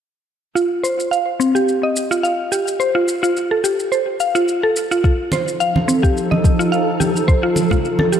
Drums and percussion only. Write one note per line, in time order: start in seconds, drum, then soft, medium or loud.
0.57 shaker soft
0.85 shaker medium
1.00 shaker soft
1.13 shaker soft
1.41 shaker medium
1.56 shaker soft
1.69 shaker soft
1.96 shaker medium
2.12 shaker soft
2.25 shaker soft
2.53 shaker medium
2.68 shaker soft
2.80 shaker soft
3.08 shaker medium
3.24 shaker soft
3.37 shaker soft
3.65 shaker medium
3.80 shaker soft
3.93 shaker soft
4.20 shaker medium
4.35 shaker soft
4.48 shaker soft
4.76 shaker medium
4.92 shaker soft
5.04 kick loud
5.04 shaker soft
5.32 muted conga medium
5.32 shaker medium
5.48 shaker soft
5.61 shaker soft
5.76 high conga medium
5.89 shaker medium
6.04 kick medium
6.04 shaker soft
6.17 shaker soft
6.32 high conga medium
6.44 kick loud
6.44 shaker medium
6.61 shaker soft
6.73 shaker soft
7.01 high conga medium
7.01 shaker medium
7.17 shaker soft
7.28 kick loud
7.28 shaker soft
7.56 muted conga soft
7.56 shaker medium
7.71 kick medium
7.71 low conga medium
7.71 shaker soft
7.85 shaker soft
7.99 high conga medium
8.13 shaker medium